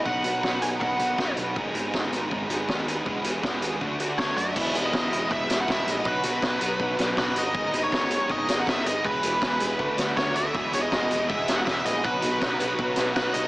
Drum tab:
CC |--------|--------|--------|x-------|
HH |-x-x-x-x|-x-x-x-x|-x-x-x-x|-x-x-x-x|
SD |--o---o-|--o---o-|--o---o-|--o--oo-|
BD |o-o-o-o-|o-o-o-o-|o-o-o-o-|o-o-o-o-|

CC |--------|--------|--------|--------|
HH |-x-x-x-x|-x-x-x-x|-x-x-x-x|-x-x-x-x|
SD |--o--oo-|--o--oo-|--o--oo-|--o--oo-|
BD |o-o-o-o-|o-o-o-o-|o-o-o-o-|o-o-o-o-|

CC |--------|
HH |-x-x-x-x|
SD |--o--oo-|
BD |o-o-o-o-|